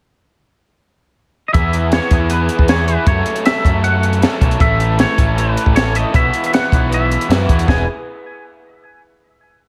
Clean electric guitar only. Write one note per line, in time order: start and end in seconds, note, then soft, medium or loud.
1.48 1.53 D#5 medium
1.53 1.90 E5 medium
1.93 2.29 C#5 medium
2.31 2.70 B4 medium
2.69 2.89 C#5 medium
2.88 3.08 B4 medium
3.08 3.45 C#5 medium
3.46 3.81 E5 medium
3.84 4.37 F#5 medium
4.61 5.00 E5 medium
5.00 5.39 C#5 medium
5.40 5.74 B4 medium
5.76 5.96 C#5 medium
5.96 6.15 D#5 medium
6.16 6.45 E5 medium
6.46 6.53 E5 medium
6.54 6.89 F#5 medium
6.94 7.46 E5 medium
7.69 7.86 G#5 medium